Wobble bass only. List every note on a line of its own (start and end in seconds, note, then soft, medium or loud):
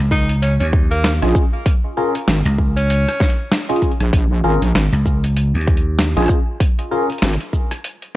1.23 1.33 A#1 medium
2.28 2.43 G#1 medium
4.00 4.11 A#1 loud
4.13 4.42 A#1 medium
4.44 4.59 G#1 loud
4.62 4.73 A#1 loud
4.74 4.90 G#1 loud
6.17 6.28 A#1 medium
7.22 7.38 G#1 loud